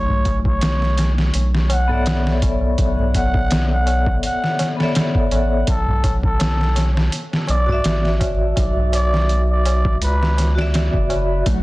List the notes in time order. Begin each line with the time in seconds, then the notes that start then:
Already playing: B1 A3 C#5
0.09 tabla na, tabla ge
0.25 kick, closed hi-hat, tabla na
0.45 C#5, kick, tabla na
0.61 snare, closed hi-hat, tabla na
0.82 snare, tabla na
0.98 snare, closed hi-hat, tabla na
1.18 snare, tabla na
1.34 B1, closed hi-hat, tabla na
1.53 snare, tabla na
1.69 F#5, closed hi-hat, tabla na
1.88 B3 A4 C#5, tabla na, tabla ge
1.92 D5 E5
2.06 snare, closed hi-hat, tabla na
2.26 snare, tabla na
2.42 kick, closed hi-hat, tabla na
2.61 tabla na
2.78 B1, kick, closed hi-hat, tabla na
2.99 tabla na, tabla ge
3.14 F#5, kick, closed hi-hat, tabla na
3.34 kick, tabla na
3.51 snare, closed hi-hat, tabla na
3.71 F#5, tabla na
3.86 closed hi-hat, tabla na
4.06 kick, tabla na
4.23 F#5, closed hi-hat, tabla na
4.43 snare, tabla na
4.59 snare, closed hi-hat, tabla na
4.77 B3 A4 C#5, snare, tabla na
4.81 D5 E5
4.95 snare, closed hi-hat, tabla na
5.15 kick, tabla na
5.31 A1, closed hi-hat, tabla na
5.50 tabla na
5.67 B1 A4, kick, closed hi-hat, tabla na
5.87 tabla na, tabla ge
6.04 kick, closed hi-hat, tabla na
6.23 A4, kick, tabla na
6.39 snare, closed hi-hat, tabla na
6.60 snare, tabla na
6.76 snare, closed hi-hat, tabla na
6.95 snare, tabla na
7.11 closed hi-hat, tabla na
7.31 snare, tabla na
7.47 B1 D5, closed hi-hat, tabla na
7.66 F#4 D5, tabla na, tabla ge
7.72 E5
7.84 A1, snare, closed hi-hat, tabla na
8.04 snare, tabla na
8.20 kick, closed hi-hat, tabla na
8.40 tabla na
8.56 B1, kick, closed hi-hat, tabla na
8.76 tabla na, tabla ge
8.93 D5, closed hi-hat, tabla na
9.13 snare, tabla na
9.29 closed hi-hat, tabla na
9.50 D5, tabla na
9.66 closed hi-hat, tabla na
9.85 kick, tabla na
10.02 C#2 B4, closed hi-hat, tabla na
10.21 snare, tabla na
10.37 snare, closed hi-hat, tabla na
10.55 F#4 D5, snare, tabla na
10.61 E5
10.74 snare, closed hi-hat, tabla na
10.93 F#1, kick, tabla na
11.10 closed hi-hat, tabla na
11.31 tabla na
11.46 B1 F#3 A3 F#4, kick, closed hi-hat, tabla na